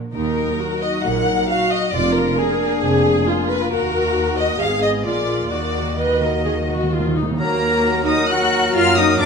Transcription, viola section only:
0.15 0.57 D#4 medium
0.59 1.05 F#4 medium
1.04 1.49 A#4 medium
1.50 1.93 F#4 medium
1.94 2.37 F4 medium
2.39 2.83 A#4 medium
2.83 3.27 G#4 medium
3.27 3.72 F4 medium
3.71 4.58 F#4 medium
4.59 5.05 G#4 medium
5.05 5.51 F4 medium
5.52 5.94 F#4 medium
5.99 6.21 B4 medium
6.22 6.46 A#4 medium
6.45 6.53 G#4 medium
6.69 6.92 F#4 medium
6.92 7.16 F4 medium
7.16 7.40 D#4 medium
7.40 8.04 A#3 medium
8.07 8.30 D#4 medium
8.30 8.75 F#4 medium
8.75 8.97 F4 medium
8.97 9.19 D#4 medium
9.20 9.26 D4 loud

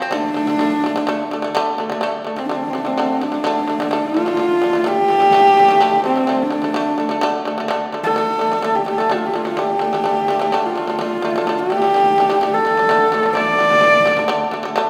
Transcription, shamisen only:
0.02 0.10 C4 medium
0.11 0.30 D3 medium
0.11 0.31 A3 loud
0.34 0.44 D3 medium
0.34 0.46 A3 medium
0.47 0.57 D3 medium
0.47 0.58 A3 medium
0.59 0.78 D3 medium
0.59 0.79 A3 medium
0.84 0.93 D3 medium
0.84 0.94 A3 medium
0.96 1.05 D3 medium
0.96 1.06 A3 medium
1.07 1.26 D3 loud
1.07 1.27 A3 loud
1.31 1.41 D3 medium
1.31 1.42 A3 medium
1.42 1.52 D3 medium
1.42 1.53 A3 medium
1.55 1.74 D3 loud
1.55 1.75 A3 loud
1.78 1.88 D3 medium
1.78 1.89 A3 medium
1.90 1.99 D3 medium
1.90 2.01 A3 medium
2.01 2.20 D3 loud
2.01 2.21 A3 loud
2.25 2.35 D3 medium
2.25 2.36 A3 medium
2.36 2.47 D3 medium
2.36 2.48 A3 medium
2.49 2.68 D3 medium
2.49 2.69 A3 medium
2.73 2.83 D3 medium
2.73 2.84 A3 medium
2.85 2.94 D3 medium
2.85 2.95 A3 medium
2.98 3.16 D3 medium
2.98 3.17 A3 loud
3.21 3.31 D3 medium
3.21 3.31 A3 medium
3.32 3.42 D3 medium
3.32 3.43 A3 medium
3.44 3.63 D3 medium
3.44 3.65 A3 loud
3.68 3.77 D3 medium
3.68 3.78 A3 medium
3.80 3.90 D3 medium
3.80 3.90 A3 medium
3.91 4.10 D3 medium
3.91 4.11 A3 loud
4.14 4.24 D3 medium
4.14 4.26 A3 medium
4.26 4.36 D3 medium
4.26 4.37 A3 medium
4.37 4.57 D3 medium
4.37 4.58 A3 medium
4.62 4.72 D3 medium
4.62 4.73 A3 medium
4.73 4.83 D3 medium
4.73 4.85 A3 medium
4.84 5.04 D3 medium
4.84 5.05 A3 medium
5.08 5.19 D3 medium
5.08 5.20 A3 medium
5.20 5.31 D3 medium
5.20 5.31 A3 medium
5.32 5.52 D3 loud
5.32 5.53 A3 loud
5.57 5.67 D3 medium
5.57 5.68 A3 medium
5.68 5.78 D3 medium
5.68 5.80 A3 medium
5.80 6.00 D3 loud
5.80 6.01 A3 loud
6.04 6.14 D3 medium
6.04 6.15 A3 medium
6.16 6.26 D3 medium
6.16 6.26 A3 medium
6.27 6.47 D3 medium
6.27 6.48 A3 medium
6.50 6.61 D3 medium
6.50 6.62 A3 medium
6.62 6.72 D3 medium
6.62 6.74 A3 medium
6.74 6.94 D3 medium
6.74 6.95 A3 loud
6.98 7.08 D3 medium
6.98 7.09 A3 medium
7.09 7.20 D3 medium
7.09 7.21 A3 medium
7.21 7.41 D3 loud
7.21 7.42 A3 loud
7.45 7.56 D3 medium
7.45 7.57 A3 medium
7.58 7.67 D3 medium
7.58 7.69 A3 medium
7.68 7.88 D3 loud
7.68 7.89 A3 loud
7.92 8.03 D3 medium
7.92 8.04 A3 medium
8.04 8.14 D3 medium
8.04 8.16 A3 medium
8.16 8.36 D3 medium
8.16 8.37 A3 medium
8.39 8.50 D3 medium
8.39 8.51 A3 medium
8.52 8.61 D3 medium
8.52 8.63 A3 medium
8.62 8.83 D3 medium
8.62 8.84 A3 loud
8.86 8.97 D3 medium
8.86 8.98 A3 medium
8.98 9.08 D3 medium
8.98 9.10 A3 medium
9.10 9.30 D3 medium
9.10 9.31 A3 loud
9.34 9.44 D3 medium
9.34 9.45 A3 medium
9.45 9.56 D3 medium
9.45 9.57 A3 medium
9.57 9.77 D3 medium
9.57 9.78 A3 medium
9.79 9.90 D3 medium
9.79 9.92 A3 medium
9.93 10.03 D3 medium
9.93 10.04 A3 medium
10.04 10.24 D3 medium
10.04 10.25 A3 medium
10.28 10.38 D3 medium
10.28 10.40 A3 medium
10.39 10.50 D3 medium
10.39 10.51 A3 medium
10.52 10.72 D3 medium
10.52 10.73 A3 loud
10.76 10.86 D3 medium
10.76 10.87 A3 medium
10.87 10.98 D3 medium
10.87 10.99 A3 medium
10.99 11.18 D3 medium
10.99 11.20 A3 loud
11.22 11.33 D3 medium
11.22 11.34 A3 medium
11.36 11.45 D3 medium
11.36 11.46 A3 medium
11.47 11.66 D3 medium
11.47 11.67 A3 medium
11.70 11.80 D3 medium
11.70 11.81 A3 medium
11.82 11.92 D3 medium
11.82 11.93 A3 medium
11.94 12.13 D3 medium
11.94 12.14 A3 medium
12.18 12.28 D3 medium
12.18 12.29 A3 medium
12.30 12.39 D3 medium
12.30 12.40 A3 medium
12.41 12.60 D3 medium
12.41 12.61 A3 medium
12.65 12.75 D3 medium
12.65 12.75 A3 medium
12.77 12.87 D3 medium
12.77 12.88 A3 medium
12.89 13.08 D3 loud
12.89 13.09 A3 loud
13.12 13.22 D3 medium
13.12 13.23 A3 medium
13.23 13.33 D3 medium
13.23 13.34 A3 medium
13.35 13.54 D3 medium
13.35 13.55 A3 medium
13.59 13.68 D3 medium
13.59 13.69 A3 medium
13.70 13.80 D3 medium
13.70 13.81 A3 medium
13.81 14.01 D3 medium
13.81 14.02 A3 medium
14.05 14.15 D3 medium
14.05 14.16 A3 medium
14.17 14.27 D3 medium
14.17 14.28 A3 medium
14.28 14.48 D3 loud
14.28 14.49 A3 loud
14.51 14.62 D3 medium
14.51 14.63 A3 medium
14.63 14.74 D3 medium
14.63 14.75 A3 medium
14.76 14.90 D3 loud
14.76 14.90 A3 loud

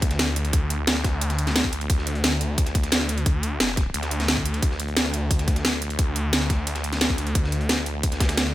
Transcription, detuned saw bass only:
0.02 0.86 D2 loud
0.87 1.88 D2 loud
1.90 2.22 D2 loud
2.24 2.74 D2 loud
2.75 3.59 D2 loud
3.60 3.93 F1 medium
3.94 4.61 D2 loud
4.62 4.95 D2 loud
4.97 5.46 D2 medium
5.48 6.32 D2 loud
6.33 7.34 D2 loud
7.35 7.68 D2 medium
7.69 8.19 D2 medium
8.20 8.54 D2 loud

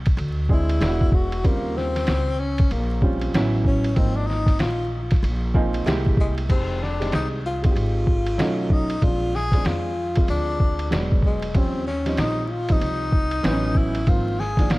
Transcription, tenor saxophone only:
0.53 1.16 E4 medium
1.15 1.48 F#4 loud
1.46 1.78 A#3 medium
1.77 2.42 C4 loud
2.40 2.74 C#4 medium
2.72 3.03 A#3 medium
3.67 3.97 C#4 medium
3.96 4.18 C4 loud
4.16 4.28 D4 medium
4.27 4.61 D#4 loud
4.60 4.92 F4 loud
6.21 6.34 G#3 medium
6.50 6.84 C4 medium
6.83 7.14 D4 medium
7.15 7.28 D#4 medium
7.46 7.63 F4 loud
7.64 8.74 F4 loud
8.72 9.05 D#4 loud
9.04 9.37 F4 loud
9.36 9.68 G#4 loud
9.67 10.29 F4 loud
10.30 10.94 D4 loud
11.26 11.58 G#3 medium
11.56 11.86 C4 loud
11.87 12.16 C#4 loud
12.19 12.49 D#4 loud
12.47 12.53 E4 medium
12.47 12.73 F4 loud
12.72 13.79 D#4 loud
13.77 14.10 E4 medium
14.09 14.41 F4 medium
14.40 14.73 G#4 medium
14.72 14.79 F4 medium

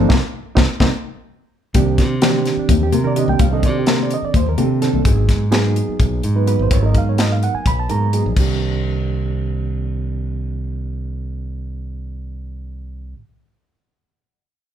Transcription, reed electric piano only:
0.00 0.10 D4 medium
0.00 0.10 A4 medium
0.08 0.17 A#3 medium
0.08 0.17 C4 medium
0.08 0.17 D#4 medium
0.55 0.64 A#3 medium
0.55 0.64 C4 medium
0.55 0.64 D#4 loud
0.81 0.88 A#3 loud
0.81 0.88 C4 loud
0.81 0.88 D#4 medium
1.74 2.14 D#3 medium
1.74 2.14 A#3 medium
1.74 2.14 C4 medium
1.74 2.15 D4 medium
1.74 2.15 G4 medium
2.22 2.91 D#3 medium
2.22 2.91 A#3 medium
2.22 2.91 C4 medium
2.22 2.58 D4 medium
2.22 2.82 G4 loud
2.59 2.70 D4 medium
2.71 2.82 D#4 medium
2.83 2.93 G4 medium
2.94 3.03 A#4 medium
3.04 3.14 D#3 medium
3.04 3.14 A#3 medium
3.04 3.14 C4 medium
3.04 3.14 D4 medium
3.04 3.14 A#4 medium
3.04 3.17 D5 medium
3.16 3.46 D#3 medium
3.16 3.46 A#3 medium
3.16 3.46 C4 medium
3.16 3.46 D4 medium
3.16 3.46 G4 medium
3.16 3.29 D#5 medium
3.29 3.40 G5 medium
3.41 3.52 F5 medium
3.52 4.31 D#3 medium
3.52 4.32 A#3 medium
3.52 4.31 C4 medium
3.52 4.32 D4 medium
3.52 4.32 A4 medium
3.52 3.64 D#5 medium
3.66 3.76 D5 medium
3.79 3.88 G4 medium
3.90 4.00 A#4 medium
4.03 4.12 D5 medium
4.14 4.24 D#5 medium
4.25 4.35 D5 medium
4.36 4.47 C5 medium
4.49 4.59 A#4 medium
4.57 4.77 D#3 medium
4.57 4.78 A#3 medium
4.57 4.78 C4 medium
4.57 4.78 D4 medium
4.57 4.78 G4 medium
4.57 4.81 A4 medium
4.81 5.01 D#3 medium
4.81 5.01 A#3 medium
4.81 5.02 C4 medium
4.81 5.02 D4 medium
4.81 5.02 A4 medium
5.06 5.45 F#3 medium
5.06 5.45 A#3 medium
5.06 5.45 B3 medium
5.06 5.45 D#4 medium
5.06 5.45 G#4 medium
5.51 6.21 F#3 medium
5.51 6.22 A#3 medium
5.51 6.22 B3 medium
5.51 6.22 D#4 medium
5.51 6.22 G#4 loud
6.35 6.45 F#3 medium
6.35 6.45 A#3 soft
6.35 6.45 B3 medium
6.35 6.46 D#4 soft
6.35 6.46 B4 medium
6.47 6.77 F#3 medium
6.47 6.77 A#3 medium
6.47 6.77 B3 medium
6.47 6.77 D#4 medium
6.47 6.77 B4 medium
6.62 6.72 C5 medium
6.73 6.83 C#5 medium
6.82 7.62 F#3 medium
6.82 7.62 A#3 medium
6.82 7.63 B3 medium
6.82 7.63 D#4 medium
6.82 7.63 A#4 medium
6.82 6.96 D#5 medium
6.98 7.08 F5 medium
7.09 7.19 C#5 medium
7.21 7.31 D#5 medium
7.32 7.43 F5 medium
7.44 7.54 F#5 medium
7.55 7.66 G#5 medium
7.67 7.78 B5 medium
7.80 7.90 A5 medium
7.89 8.09 F#3 soft
7.89 8.10 A#3 soft
7.89 8.10 B3 soft
7.89 8.09 D#4 soft
7.89 8.09 A#4 medium
7.89 8.23 A#5 medium
8.13 8.33 F#3 medium
8.13 8.33 A#3 medium
8.13 8.33 B3 medium
8.13 8.34 D#4 soft
8.13 8.33 G#4 medium
8.36 13.13 D#3 medium
8.36 13.14 A#3 medium
8.36 13.15 C4 soft
8.36 13.16 D4 soft
8.36 13.17 G4 medium

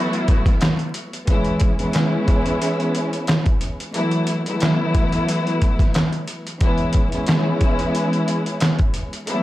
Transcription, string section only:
0.00 1.12 E3 loud
0.00 1.13 F#3 loud
0.00 1.13 A3 medium
0.00 1.13 B3 loud
0.00 1.13 E4 loud
1.28 1.75 E3 loud
1.28 1.75 G#3 medium
1.28 1.75 B3 medium
1.28 1.76 C#4 medium
1.28 1.76 E4 loud
1.79 3.78 E3 loud
1.79 3.78 G#3 loud
1.79 3.79 B3 medium
1.79 3.79 C#4 loud
1.79 3.79 E4 loud
3.93 4.41 E3 loud
3.93 4.41 F#3 medium
3.93 4.42 A3 medium
3.93 4.42 B3 medium
3.93 4.42 E4 loud
4.47 6.46 E3 loud
4.47 6.46 F#3 medium
4.47 6.46 A3 medium
4.47 6.46 B3 medium
4.47 6.47 E4 loud
6.61 7.08 E3 loud
6.61 7.08 G#3 medium
6.61 7.09 B3 medium
6.61 7.09 C#4 medium
6.61 7.09 E4 loud
7.12 9.12 E3 loud
7.12 9.12 G#3 loud
7.12 9.12 B3 medium
7.12 9.12 C#4 loud
7.12 9.13 E4 loud
9.26 9.43 E3 loud
9.26 9.43 F#3 medium
9.26 9.43 A3 medium
9.26 9.43 B3 medium
9.26 9.43 E4 loud

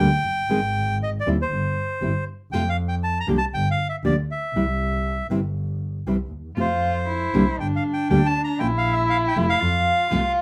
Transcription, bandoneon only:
0.00 0.98 G5 loud
1.03 1.10 D#5 medium
1.20 1.29 D5 medium
1.42 2.24 C5 medium
2.52 2.69 G5 loud
2.69 2.77 F5 medium
2.88 2.95 G5 medium
3.03 3.19 A5 loud
3.20 3.27 A#5 loud
3.38 3.45 A5 loud
3.54 3.69 G5 loud
3.71 3.87 F5 medium
3.89 3.96 E5 medium
4.05 4.16 D5 medium
4.31 5.27 E5 medium
6.60 7.56 C5 medium
7.60 7.67 G5 medium
7.76 7.83 F5 medium
7.93 8.08 G5 loud
8.10 8.27 G5 loud
8.26 8.42 A5 loud
8.44 8.59 A#5 loud
8.60 8.67 G5 loud
8.78 8.94 F5 loud
8.93 9.09 E5 medium
9.10 9.17 F5 medium
9.28 9.37 G5 medium
9.50 10.32 F5 loud

